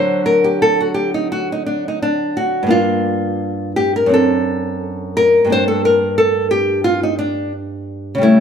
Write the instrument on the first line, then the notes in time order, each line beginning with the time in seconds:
nylon-string guitar
Already playing: D3 F#3 D4 C5
0.26 A#4
0.44 G4
0.62 A4
0.81 F#4
0.94 G4
1.14 D#4
1.32 F#4
1.52 D#4
1.66 D4
1.88 D#4
2.02 D4
2.37 F#4
2.63 G2 A#3
2.69 D4 F4
3.76 G4
3.96 A#4
4.06 F#2 C4
4.11 D4 A4
5.17 A#4
5.45 G2 A#3
5.50 D4 C5
5.68 A4
5.85 A#4
6.18 A4
6.51 G4
6.84 F4
7.03 D#4
7.19 D4
8.15 C#3 G3
8.22 A3 E4